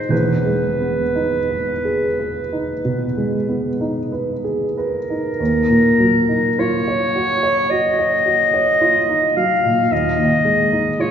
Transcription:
Already playing: C4 D#4 G#4 A#4 C5
0.09 E1 E2 B4
0.46 G#3
0.80 B3
1.15 D#4
1.51 B4
1.85 G#4
2.19 B4
2.53 D#4
2.85 B2
3.17 G#3
3.49 B3
3.81 D#4
4.12 B4
4.44 G#4
4.77 A#4 B4
5.10 D#4
5.40 D#2
5.70 A#2
6.00 F#3
6.29 D#4
6.59 F4 C#5
6.88 C#5
7.16 F#4
7.43 C#5
7.70 F#4 D#5
7.99 C#5
8.26 F#4
8.54 C#5
8.81 F4
9.09 D#4
9.36 F#3 F5
9.65 A#2
9.91 D#2 D#5
10.19 D#3
10.45 G#3
10.72 D#4
11.00 F4 C#5

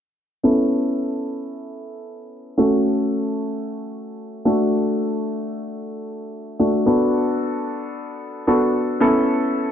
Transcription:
0.43 B3 C#4 E4 A4
2.58 A3 C#4 F#4 A4
4.45 A3 D4 F#4 A4
6.59 A3 D4 F#4 A4
6.86 B3 D4 F#4 A4
8.47 B3 D4 F#4 A4
9.00 B3 C#4 E4 A4

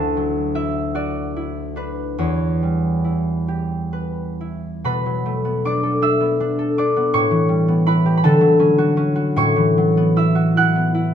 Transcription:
Already playing: D2 A3 E4 A4 F#5 A5
0.17 F#3
0.55 E4 E5
0.95 F#4 D5
1.36 E4
1.76 D4 B4
2.19 E2 C#5
2.63 G3
3.04 E4
3.48 G4
3.93 B4
4.41 E4
4.84 B2 B4 B5
5.06 F#3
5.26 A3
5.45 B3
5.65 D4 D5 D6
5.83 A4
6.02 D4 E5 E6
6.20 B3
6.40 D4
6.59 A4
6.78 D4 D5 D6
6.96 B3
7.13 A2 C#5 C#6
7.31 E3
7.49 G3
7.68 B3
7.86 E4 B4 B5
8.06 G4
8.17 B5
8.24 D3 A4 A5
8.41 F#3
8.60 C#4
8.78 F#4
8.97 C#4
9.16 F#4
9.36 A2 C#5 C#6
9.56 E3
9.78 F#3
9.97 B3
10.16 E4 E5 E6
10.35 F#4
10.57 E4 F#5 F#6
10.76 B3
10.95 E4

